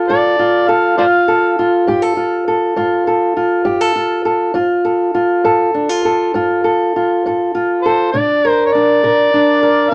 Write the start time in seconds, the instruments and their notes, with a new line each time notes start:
Already playing: steel-string acoustic guitar F4
0.08 steel-string acoustic guitar G2 A4, harmonica D5
0.39 steel-string acoustic guitar F4
0.68 steel-string acoustic guitar A4, harmonica F5
0.98 steel-string acoustic guitar G2 F4, harmonica C5 D5 F5
1.28 steel-string acoustic guitar A4
1.59 steel-string acoustic guitar F4
1.87 steel-string acoustic guitar G2 G4
2.02 steel-string acoustic guitar A4
2.17 steel-string acoustic guitar F4
2.48 steel-string acoustic guitar A4
2.76 steel-string acoustic guitar G2 F4
3.07 steel-string acoustic guitar A4
3.37 steel-string acoustic guitar F4
3.65 steel-string acoustic guitar G2 G4
3.81 steel-string acoustic guitar A4
3.95 steel-string acoustic guitar F4
4.25 steel-string acoustic guitar A4
4.54 steel-string acoustic guitar G2 F4
4.85 steel-string acoustic guitar A4
5.15 steel-string acoustic guitar F4
5.44 steel-string acoustic guitar G2 A4
5.74 steel-string acoustic guitar D4
5.89 steel-string acoustic guitar F4
6.05 steel-string acoustic guitar A4
6.34 steel-string acoustic guitar G2 F4
6.64 steel-string acoustic guitar A4
6.96 steel-string acoustic guitar F4
7.26 steel-string acoustic guitar G2 A4
7.55 steel-string acoustic guitar F4
7.82 steel-string acoustic guitar A4, harmonica C5
8.11 steel-string acoustic guitar C3 D4, harmonica D5
8.45 steel-string acoustic guitar A#4
8.49 harmonica C5
8.66 harmonica C#5
8.72 steel-string acoustic guitar D4, harmonica D5
9.03 steel-string acoustic guitar C3 A#4
9.34 steel-string acoustic guitar D4
9.63 steel-string acoustic guitar A#4
9.90 harmonica F5